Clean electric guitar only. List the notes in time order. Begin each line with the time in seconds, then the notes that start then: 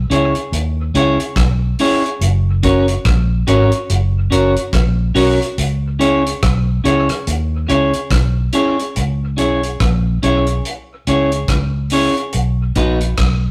0.10 C#4 E4 G#4 C#5
0.95 C#4 E4 G#4 C#5
1.80 C#4 E4 G#4 C#5
2.63 C#4 F#4 A#4 C#5
3.47 C#4 F#4 A#4 C#5
4.31 C#4 F#4 A#4 C#5
5.15 C#4 F#4 A#4 C#5
5.99 C#4 E4 G#4 C#5
6.84 C#4 E4 G#4 C#5
7.68 C#4 E4 G#4 C#5
8.53 C#4 E4 G#4 C#5
8.80 muted clean electric guitar stroke
9.37 C#4 E4 G#4 C#5
10.23 C#4 E4 G#4 C#5
11.07 C#4 E4 G#4 C#5
11.92 C#4 E4 G#4 C#5
12.76 B3 D#4 F#4 B4